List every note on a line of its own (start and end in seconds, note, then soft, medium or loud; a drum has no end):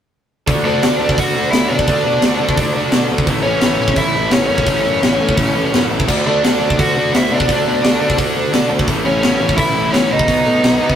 0.47 0.63 D2 medium
0.47 0.64 D3 medium
0.47 0.65 A3 medium
0.47 0.65 D4 loud
0.47 0.66 F#4 loud
0.47 kick loud
0.47 open hi-hat medium
0.53 1.89 D4 loud
0.64 0.80 D2 medium
0.64 0.81 D3 medium
0.64 0.82 A3 medium
0.64 1.13 D4 medium
0.64 0.83 D4 loud
0.64 0.83 F#4 loud
0.64 1.19 D5 medium
0.82 0.98 D2 loud
0.82 0.99 D3 medium
0.82 1.00 A3 medium
0.82 1.00 D4 medium
0.82 1.01 F#4 medium
0.82 snare loud
0.82 open hi-hat medium
1.00 1.15 D2 medium
1.00 1.17 D3 medium
1.00 1.18 A3 medium
1.00 1.18 D4 medium
1.00 1.18 F#4 loud
1.09 kick medium
1.18 1.33 D2 medium
1.18 1.34 D3 loud
1.18 1.36 A3 loud
1.18 1.36 D4 loud
1.18 1.51 F#4 medium
1.18 1.36 F#4 loud
1.18 1.51 F#5 loud
1.18 kick loud
1.18 open hi-hat medium
1.35 1.50 D2 medium
1.35 1.52 D3 medium
1.35 1.53 A3 medium
1.35 1.53 D4 medium
1.35 1.53 F#4 medium
1.50 1.67 D2 medium
1.50 1.69 D3 loud
1.50 1.71 A3 loud
1.50 1.67 E4 medium
1.50 1.70 E5 loud
1.50 snare loud
1.50 open hi-hat medium
1.54 1.71 D4 loud
1.54 1.71 F#4 loud
1.68 1.85 B2 medium
1.68 1.88 D3 medium
1.68 1.88 A3 medium
1.68 3.06 D4 medium
1.68 1.89 D4 loud
1.68 1.89 F#4 medium
1.68 3.05 D5 medium
1.79 kick medium
1.87 2.03 D2 loud
1.87 2.04 D3 medium
1.87 2.06 A3 loud
1.87 2.06 D4 loud
1.87 2.06 F#4 loud
1.87 kick medium
1.87 open hi-hat medium
2.05 2.20 B2 medium
2.05 2.22 D3 medium
2.05 2.24 A3 medium
2.05 2.23 D4 medium
2.05 2.24 F#4 loud
2.22 2.38 D2 medium
2.22 2.40 D3 medium
2.22 2.41 A3 medium
2.22 2.41 D4 medium
2.22 2.42 F#4 medium
2.22 snare loud
2.22 open hi-hat medium
2.40 2.55 D3 medium
2.40 2.57 D3 medium
2.40 2.58 A3 medium
2.40 2.58 D4 medium
2.40 2.58 F#4 medium
2.49 kick medium
2.57 2.73 D2 loud
2.57 2.74 D3 loud
2.57 2.76 A3 loud
2.57 2.76 D4 loud
2.57 2.76 F#4 loud
2.57 kick loud
2.57 open hi-hat medium
2.75 2.91 D2 medium
2.75 2.93 D3 medium
2.75 2.94 A3 medium
2.75 2.94 D4 loud
2.75 2.95 F#4 loud
2.92 3.09 B2 medium
2.92 3.10 D3 medium
2.92 3.11 A3 loud
2.92 3.10 D4 loud
2.92 snare loud
2.92 open hi-hat medium
2.96 3.11 F#4 loud
3.11 3.26 D2 medium
3.11 3.27 D3 medium
3.11 3.28 A3 medium
3.11 3.27 D4 loud
3.11 3.28 F#4 loud
3.18 kick medium
3.27 3.43 A1 loud
3.27 3.45 A2 loud
3.27 3.45 E3 loud
3.27 3.46 A3 medium
3.27 3.47 C#4 loud
3.27 3.47 E4 loud
3.27 kick loud
3.27 open hi-hat medium
3.43 3.61 A1 loud
3.43 3.62 A2 loud
3.43 3.63 E3 medium
3.43 3.94 C#4 medium
3.43 3.98 C#5 medium
3.47 3.63 A3 loud
3.47 3.63 C#4 medium
3.47 3.64 E4 loud
3.61 3.78 A1 medium
3.61 3.80 A2 loud
3.61 3.80 E3 loud
3.61 3.80 A3 medium
3.61 3.81 C#4 medium
3.61 3.82 E4 medium
3.61 snare loud
3.61 open hi-hat medium
3.79 3.95 A1 medium
3.79 3.96 A2 medium
3.79 3.96 E3 medium
3.79 3.97 A3 medium
3.79 3.97 C#4 medium
3.79 3.98 E4 medium
3.88 kick medium
3.96 4.13 A1 medium
3.96 4.13 A2 loud
3.96 4.14 E3 loud
3.96 4.15 A3 loud
3.96 4.15 C#4 loud
3.96 4.30 E4 medium
3.96 4.16 E4 loud
3.96 4.34 E5 loud
3.96 kick loud
3.96 open hi-hat medium
4.14 4.30 A1 medium
4.14 4.31 A2 medium
4.14 4.32 E3 medium
4.14 4.33 A3 loud
4.14 4.33 C#4 loud
4.14 4.33 E4 medium
4.31 4.48 A1 medium
4.31 4.49 A2 medium
4.31 4.49 E3 loud
4.31 4.51 A3 medium
4.31 4.46 C#4 medium
4.31 4.50 C#4 loud
4.31 4.51 E4 loud
4.31 4.45 C#5 medium
4.31 snare loud
4.31 open hi-hat medium
4.46 4.65 F#2 medium
4.46 4.65 A2 medium
4.46 5.85 C#4 medium
4.46 5.84 C#5 medium
4.51 4.66 E3 medium
4.51 4.67 A3 medium
4.51 4.67 C#4 loud
4.51 4.67 E4 loud
4.58 kick medium
4.66 4.83 A1 loud
4.66 4.83 A2 loud
4.66 4.84 E3 loud
4.66 4.85 A3 loud
4.66 4.85 C#4 loud
4.66 4.86 E4 loud
4.66 kick medium
4.66 open hi-hat medium
4.85 5.01 F#2 medium
4.85 5.01 A2 medium
4.85 5.02 E3 medium
4.85 5.03 A3 medium
4.85 5.02 C#4 loud
4.85 5.03 E4 medium
5.02 5.19 A1 medium
5.02 5.19 A2 medium
5.02 5.19 E3 medium
5.02 5.21 A3 loud
5.02 5.20 C#4 medium
5.02 5.21 E4 loud
5.02 snare loud
5.02 open hi-hat medium
5.20 5.35 A2 medium
5.20 5.36 A2 medium
5.20 5.36 E3 medium
5.20 5.37 A3 medium
5.20 5.37 C#4 medium
5.20 5.37 E4 medium
5.29 kick medium
5.36 5.53 A1 medium
5.36 5.53 A2 medium
5.36 5.53 E3 loud
5.36 5.55 A3 loud
5.36 5.54 C#4 loud
5.36 5.55 E4 loud
5.36 kick loud
5.36 open hi-hat medium
5.54 5.71 A1 medium
5.54 5.71 A2 medium
5.54 5.72 E3 medium
5.54 5.73 A3 medium
5.54 5.73 C#4 medium
5.54 5.74 E4 medium
5.72 5.89 F#2 medium
5.72 5.88 A2 medium
5.72 5.89 E3 loud
5.72 5.90 A3 loud
5.72 5.90 C#4 loud
5.72 5.90 E4 loud
5.72 snare loud
5.72 open hi-hat medium
5.89 6.06 A1 medium
5.89 6.06 A2 medium
5.89 6.06 E3 medium
5.89 6.07 A3 medium
5.89 6.07 C#4 medium
5.89 6.07 E4 loud
6.00 kick medium
6.07 6.24 D2 loud
6.07 6.25 D3 loud
6.07 6.26 A3 loud
6.07 6.26 D4 loud
6.07 6.27 F#4 loud
6.07 kick medium
6.07 crash loud
6.12 7.49 D4 loud
6.25 6.41 D2 medium
6.25 6.42 D3 medium
6.25 6.43 A3 loud
6.25 6.75 D4 medium
6.25 6.44 D4 medium
6.25 6.44 F#4 loud
6.25 6.80 D5 medium
6.42 6.59 D2 medium
6.42 6.60 D3 medium
6.42 6.60 A3 medium
6.42 6.61 D4 loud
6.42 6.61 F#4 loud
6.42 snare loud
6.42 open hi-hat medium
6.60 6.76 D2 medium
6.60 6.77 D3 medium
6.60 6.78 A3 medium
6.60 6.78 D4 medium
6.60 6.78 F#4 medium
6.70 kick medium
6.78 6.94 D2 medium
6.78 6.95 D3 loud
6.78 6.96 A3 loud
6.78 6.96 D4 loud
6.78 7.11 F#4 medium
6.78 6.97 F#4 loud
6.78 7.15 F#5 loud
6.78 kick loud
6.78 open hi-hat medium
6.96 7.11 D2 medium
6.96 7.11 D3 medium
6.96 7.13 A3 medium
6.96 7.13 D4 loud
6.96 7.13 F#4 medium
7.13 7.29 D2 medium
7.13 7.29 D3 loud
7.13 7.30 A3 loud
7.13 7.30 D4 loud
7.13 7.31 E4 medium
7.13 7.31 F#4 loud
7.13 snare loud
7.13 open hi-hat medium
7.17 7.33 E5 medium
7.30 7.46 B2 medium
7.30 7.46 D3 medium
7.30 7.48 A3 medium
7.30 7.47 D4 medium
7.30 8.68 D4 medium
7.30 7.47 F#4 medium
7.36 8.69 D5 medium
7.40 kick medium
7.47 7.64 D2 loud
7.47 7.64 D3 medium
7.47 7.65 A3 loud
7.47 7.65 D4 loud
7.47 7.65 F#4 loud
7.47 kick loud
7.47 open hi-hat medium
7.65 7.81 B2 medium
7.65 7.81 D3 medium
7.65 7.83 A3 medium
7.65 7.82 D4 loud
7.65 7.82 F#4 medium
7.82 7.99 D2 medium
7.82 7.98 D3 medium
7.82 8.00 A3 medium
7.82 8.00 D4 medium
7.82 8.00 F#4 medium
7.82 snare loud
7.82 open hi-hat medium
7.99 8.15 D3 medium
7.99 8.16 D3 medium
7.99 8.16 A3 loud
7.99 8.16 D4 medium
7.99 8.17 F#4 medium
8.10 kick medium
8.16 8.34 D2 medium
8.16 8.34 D3 medium
8.16 8.35 A3 loud
8.16 8.35 D4 loud
8.16 8.36 F#4 loud
8.16 kick loud
8.16 open hi-hat medium
8.35 8.51 D2 medium
8.35 8.51 D3 medium
8.35 8.51 A3 medium
8.35 8.51 D4 medium
8.35 8.52 F#4 medium
8.52 8.68 B2 medium
8.52 8.68 D3 medium
8.52 8.69 A3 loud
8.52 8.70 D4 loud
8.52 8.70 F#4 loud
8.52 snare loud
8.52 open hi-hat medium
8.70 8.86 D2 medium
8.70 8.86 D3 medium
8.70 8.87 A3 medium
8.70 8.87 D4 loud
8.70 8.87 F#4 loud
8.79 kick medium
8.87 9.03 A1 loud
8.87 9.05 A2 loud
8.87 9.05 E3 loud
8.87 9.06 A3 loud
8.87 9.06 C#4 loud
8.87 9.07 E4 loud
8.87 kick medium
8.87 open hi-hat medium
9.05 9.21 A1 medium
9.05 9.21 A2 medium
9.05 9.22 E3 medium
9.05 9.23 A3 medium
9.05 9.54 C#4 medium
9.05 9.23 C#4 loud
9.05 9.23 E4 medium
9.05 9.54 C#5 medium
9.23 9.39 A1 medium
9.23 9.38 A2 medium
9.23 9.40 E3 loud
9.23 9.39 A3 medium
9.23 9.40 C#4 medium
9.23 9.41 E4 medium
9.23 snare loud
9.23 open hi-hat medium
9.40 9.56 A1 medium
9.40 9.56 A2 medium
9.40 9.56 E3 medium
9.40 9.56 A3 medium
9.40 9.57 C#4 medium
9.40 9.58 E4 loud
9.49 kick medium
9.57 9.73 A1 medium
9.57 9.73 A2 medium
9.57 9.73 E3 loud
9.57 9.74 A3 loud
9.57 9.74 C#4 loud
9.57 9.90 E4 medium
9.57 9.75 E4 loud
9.57 9.94 E5 loud
9.57 kick loud
9.57 open hi-hat medium
9.74 9.92 A1 loud
9.74 9.91 A2 medium
9.74 9.91 E3 medium
9.74 9.92 A3 loud
9.74 9.92 C#4 loud
9.74 9.93 E4 loud
9.92 10.09 A1 medium
9.92 10.08 A2 loud
9.92 10.10 E3 loud
9.92 10.10 A3 loud
9.92 10.09 C#4 medium
9.92 10.10 C#4 loud
9.92 10.10 E4 loud
9.92 10.11 C#5 loud
9.92 snare loud
9.92 open hi-hat medium
10.09 10.26 C#2 medium
10.09 10.26 A2 medium
10.09 10.27 E3 medium
10.09 10.27 A3 loud
10.09 10.27 C#4 medium
10.09 10.96 D#4 medium
10.09 10.27 E4 loud
10.09 10.96 D#5 medium
10.19 kick medium
10.28 10.43 B1 loud
10.28 10.45 B2 medium
10.28 10.46 D#3 loud
10.28 10.46 F#3 loud
10.28 10.47 B3 loud
10.28 10.47 D#4 loud
10.28 kick loud
10.28 open hi-hat medium
10.45 10.61 A2 medium
10.45 10.63 B2 medium
10.45 10.63 D#3 medium
10.45 10.64 F#3 loud
10.45 10.64 B3 medium
10.45 10.65 D#4 loud
10.63 10.78 B1 medium
10.63 10.80 B2 medium
10.63 10.80 D#3 medium
10.63 10.81 F#3 medium
10.63 10.81 B3 loud
10.63 10.81 D#4 medium
10.63 snare loud
10.63 open hi-hat medium
10.81 10.96 B2 medium
10.81 10.96 D#3 medium
10.81 10.96 F#3 medium
10.81 10.96 B3 medium
10.81 10.96 D#4 medium
10.90 kick medium